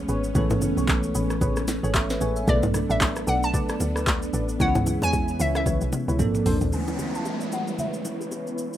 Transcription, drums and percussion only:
0.09 shaker
0.24 shaker
0.35 kick, low conga, shaker
0.50 mid tom, low bongo, shaker
0.62 low bongo, low conga, shaker
0.78 shaker
0.88 kick, clap, high bongo, shaker
1.03 shaker
1.15 shaker
1.30 cross-stick, shaker
1.41 kick, low conga, shaker
1.56 cross-stick, shaker
1.68 snare, low bongo, shaker
1.84 shaker
1.94 kick, clap, high bongo, shaker
2.10 snare, shaker
2.21 shaker
2.36 shaker
2.48 kick, low conga, shaker
2.63 mid tom, low bongo, shaker
2.74 cross-stick, low bongo, low conga, shaker
2.90 shaker
3.01 kick, clap, high bongo, shaker
3.16 cross-stick, shaker
3.27 shaker
3.43 shaker
3.54 kick, low conga, shaker
3.69 cross-stick, shaker
3.80 low bongo, shaker
3.96 cross-stick, shaker
4.07 kick, clap, high bongo, shaker
4.22 shaker
4.33 shaker
4.49 shaker
4.60 kick, low conga, shaker
4.75 mid tom, low bongo, shaker
4.86 low bongo, low conga, shaker
5.02 low bongo, shaker
5.13 kick, high bongo, shaker
5.28 shaker
5.40 shaker
5.55 cross-stick, shaker
5.66 kick, high tom, low conga, shaker
5.81 high tom, shaker
5.93 mid tom, low bongo, shaker
6.08 mid tom, shaker
6.19 kick, mid tom, high bongo, shaker
6.35 mid tom, shaker
6.46 floor tom, open hi-hat, shaker
6.61 floor tom, shaker
6.72 low conga, shaker
6.88 low bongo, shaker
6.99 high bongo, low conga, shaker
7.15 shaker
7.25 high bongo, shaker
7.41 shaker
7.52 shaker
7.68 shaker
7.79 low conga, shaker
7.94 shaker
8.05 low bongo, shaker
8.21 high bongo, shaker
8.31 high bongo, shaker
8.47 shaker
8.58 shaker
8.73 shaker

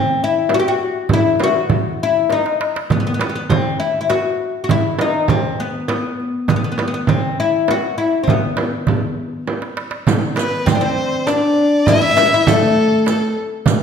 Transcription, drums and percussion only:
0.49 darbuka tek, frame drum
0.81 darbuka ka
1.09 darbuka dum, frame drum
1.40 darbuka tek, frame drum
1.70 frame drum, darbuka dum
2.00 darbuka ka
2.30 darbuka tek, frame drum
2.46 darbuka ka
2.61 darbuka tek
2.76 darbuka ka
2.90 frame drum, darbuka dum
3.19 darbuka tek, frame drum
3.49 frame drum, darbuka dum
4.10 darbuka tek, frame drum
4.40 darbuka ka
4.69 frame drum, darbuka dum
4.99 darbuka tek, frame drum
5.28 frame drum, darbuka dum
5.88 darbuka tek, frame drum
6.20 darbuka ka
6.48 frame drum, darbuka dum
6.78 darbuka tek, frame drum
7.07 frame drum, darbuka dum
7.68 darbuka tek, frame drum
7.98 darbuka ka
8.28 darbuka dum, frame drum
8.57 darbuka tek, frame drum
8.87 darbuka dum, frame drum
9.47 darbuka tek, frame drum
9.62 darbuka ka
9.77 darbuka tek
9.91 darbuka ka
10.07 riq, darbuka dum, frame drum
10.36 riq, darbuka tek, frame drum
10.67 riq, darbuka dum, frame drum
11.27 riq, darbuka tek, frame drum
11.87 riq, darbuka dum, frame drum
12.17 riq, darbuka tek, frame drum
12.47 riq, darbuka dum, frame drum
13.06 riq, darbuka tek, frame drum
13.66 riq, darbuka dum, frame drum

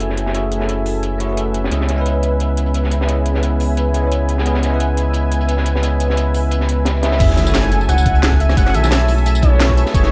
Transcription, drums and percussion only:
0.00 closed hi-hat
0.10 snare
0.17 closed hi-hat
0.26 snare
0.34 closed hi-hat
0.52 closed hi-hat
0.60 snare
0.69 closed hi-hat
0.86 closed hi-hat, open hi-hat
1.03 closed hi-hat
1.20 closed hi-hat
1.37 closed hi-hat
1.54 closed hi-hat
1.64 snare
1.71 closed hi-hat
1.81 snare
1.89 snare, closed hi-hat
2.06 closed hi-hat
2.23 closed hi-hat
2.40 closed hi-hat
2.57 closed hi-hat
2.66 closed hi-hat
2.74 closed hi-hat
2.84 snare
2.91 closed hi-hat
3.01 snare
3.09 closed hi-hat
3.25 closed hi-hat
3.35 snare
3.43 closed hi-hat
3.60 closed hi-hat, open hi-hat
3.77 closed hi-hat
3.94 closed hi-hat
4.12 closed hi-hat
4.29 closed hi-hat
4.38 snare
4.46 closed hi-hat
4.54 snare
4.63 snare, closed hi-hat
4.80 closed hi-hat
4.97 closed hi-hat
5.13 closed hi-hat
5.32 closed hi-hat
5.41 closed hi-hat
5.48 closed hi-hat
5.57 snare
5.66 closed hi-hat
5.75 snare
5.83 closed hi-hat
6.00 closed hi-hat
6.10 snare
6.17 closed hi-hat
6.34 closed hi-hat, open hi-hat
6.51 closed hi-hat
6.61 snare
6.69 closed hi-hat
6.85 snare, closed hi-hat
7.03 snare, closed hi-hat
7.12 snare, closed hi-hat
7.20 kick, closed hi-hat, crash, tambourine
7.29 snare, closed hi-hat, high bongo
7.37 snare, closed hi-hat, tambourine, high conga
7.47 tambourine
7.54 snare, closed hi-hat, tambourine
7.64 closed hi-hat, high bongo
7.72 closed hi-hat
7.81 tambourine
7.89 cross-stick, closed hi-hat, tambourine, high bongo
7.98 tambourine
8.06 kick, closed hi-hat, tambourine
8.15 closed hi-hat
8.23 snare, closed hi-hat, tambourine, high bongo
8.32 kick, snare
8.40 closed hi-hat
8.49 cross-stick, snare, tambourine, high bongo
8.57 kick, closed hi-hat, tambourine
8.66 cross-stick, snare, closed hi-hat
8.74 closed hi-hat, tambourine, high conga
8.83 snare, tambourine, high bongo
8.91 snare, closed hi-hat, tambourine
9.01 closed hi-hat
9.08 closed hi-hat, open hi-hat, high bongo
9.18 tambourine
9.26 closed hi-hat, tambourine
9.35 tambourine
9.42 kick, closed hi-hat, tambourine, high bongo
9.60 snare, closed hi-hat, tambourine
9.69 kick, cross-stick, high bongo
9.77 closed hi-hat
9.86 snare, tambourine
9.94 kick, closed hi-hat, tambourine
10.03 snare, closed hi-hat, high bongo

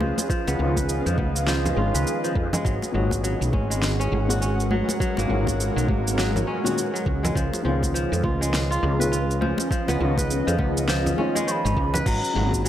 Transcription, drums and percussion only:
0.01 high conga
0.18 muted conga, cabasa
0.30 kick, cabasa
0.48 muted conga, cabasa
0.60 high conga
0.77 kick, muted conga, cabasa
0.89 cabasa
1.07 cabasa
1.18 kick, high conga
1.36 cabasa
1.47 snare, cabasa
1.66 low conga, cabasa
1.95 high conga, cabasa
2.07 cabasa
2.24 cabasa
2.35 kick
2.53 low conga, cabasa
2.65 kick, cabasa
2.82 muted conga, cabasa
3.11 kick, muted conga, cabasa
3.24 cabasa
3.42 cabasa
3.53 kick, high conga
3.72 cabasa
3.82 snare, cabasa
4.01 cabasa
4.30 cabasa
4.42 cabasa
4.60 cabasa
4.71 high conga
4.89 muted conga, cabasa
5.00 kick, cabasa
5.17 muted conga, cabasa
5.47 kick, muted conga, cabasa
5.60 cabasa
5.78 cabasa
5.88 kick, high conga
6.08 cabasa
6.18 snare, cabasa
6.36 low conga, cabasa
6.65 high conga, cabasa
6.78 cabasa
6.96 cabasa
7.06 kick
7.25 low conga, cabasa
7.35 kick, cabasa
7.53 muted conga, cabasa
7.82 kick, muted conga, cabasa
7.96 cabasa
8.13 cabasa
8.24 kick, high conga
8.43 cabasa
8.54 snare, cabasa
8.72 cabasa
9.01 cabasa
9.13 cabasa
9.31 cabasa
9.42 high conga
9.58 muted conga, cabasa
9.71 kick, cabasa
9.88 muted conga, cabasa
10.01 high conga
10.18 kick, muted conga, cabasa
10.31 cabasa
10.48 cabasa
10.58 kick, high conga
10.77 cabasa
10.88 snare, cabasa
11.06 low conga, cabasa
11.18 high conga
11.35 high conga, cabasa
11.48 cabasa
11.66 cabasa
11.77 kick
11.94 low conga, cabasa
12.06 kick, crash, cabasa
12.24 cabasa
12.53 kick, cabasa

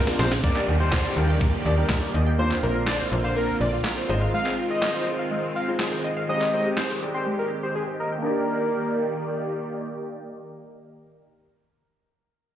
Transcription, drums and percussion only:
0.07 snare, closed hi-hat, shaker
0.19 snare, open hi-hat, shaker
0.32 snare, closed hi-hat, shaker
0.44 kick
0.56 clap
0.92 kick, snare, clap
1.41 kick
1.89 kick, snare, clap
2.51 clap
2.87 snare, clap
3.84 snare, clap
4.46 clap
4.82 snare, clap
5.79 snare, clap
6.41 clap
6.77 snare, clap

